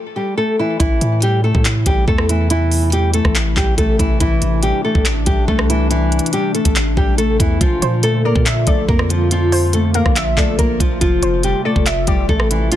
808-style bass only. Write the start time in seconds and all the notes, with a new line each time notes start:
0.80 A1
1.01 A2
1.55 A2
1.86 A1
2.08 E2
3.25 A1
3.57 A1
3.78 A1
3.99 A1
4.21 A1
4.42 A1
4.95 A1
5.27 A1
5.48 C2
6.65 A1
6.97 A1
7.40 E2
7.61 A#1
7.82 A#2
8.36 A#2
8.67 A#1
8.88 F2
10.06 A#1
10.37 A#1
10.59 A#1
10.80 A#1
11.01 F1
11.23 F1
11.76 F1
12.08 F1
12.29 A1